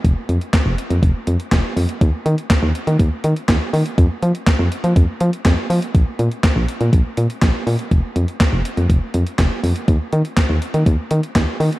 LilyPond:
<<
  \new Staff \with { instrumentName = "FM bass" } { \clef bass \time 4/4 \key ees \mixolydian \tempo 4 = 122 f,,16 r16 f,16 r8 f,,16 r16 f,16 f,,16 r16 f,16 r16 f,,16 r16 f,16 r16 | ees,16 r16 ees16 r8 ees,16 r16 ees16 ees,16 r16 ees16 r16 ees,16 r16 ees16 r16 | f,16 r16 f16 r8 f,16 r16 f16 f,16 r16 f16 r16 f,16 r16 f16 r16 | bes,,16 r16 bes,16 r8 bes,,16 r16 bes,16 bes,,16 r16 bes,16 r16 bes,,16 r16 bes,16 r16 |
f,,16 r16 f,16 r8 f,,16 r16 f,16 f,,16 r16 f,16 r16 f,,16 r16 f,16 r16 | ees,16 r16 ees16 r8 ees,16 r16 ees16 ees,16 r16 ees16 r16 ees,16 r16 ees16 r16 | }
  \new DrumStaff \with { instrumentName = "Drums" } \drummode { \time 4/4 <hh bd>8 hh16 hh16 <hc hh bd sn>8 hh16 hh16 <hh bd>8 hh16 hh16 <hc hh bd sn>8 hho16 hh16 | <hh bd>8 hh16 hh16 <hc hh bd sn>8 hh16 hh16 <hh bd>8 hh16 hh16 <hc hh bd sn>8 hho16 hh16 | <hh bd>8 hh16 hh16 <hc hh bd sn>8 hh16 hh16 <hh bd>8 hh16 hh16 <hc hh bd sn>8 hho16 hh16 | <hh bd>8 hh16 hh16 <hc hh bd sn>8 hh16 hh16 <hh bd>8 hh16 hh16 <hc hh bd sn>8 hho16 hh16 |
<hh bd>8 hh16 hh16 <hc hh bd sn>8 hh16 hh16 <hh bd>8 hh16 hh16 <hc hh bd sn>8 hho16 hh16 | <hh bd>8 hh16 hh16 <hc hh bd sn>8 hh16 hh16 <hh bd>8 hh16 hh16 <hc hh bd sn>8 hho16 hh16 | }
>>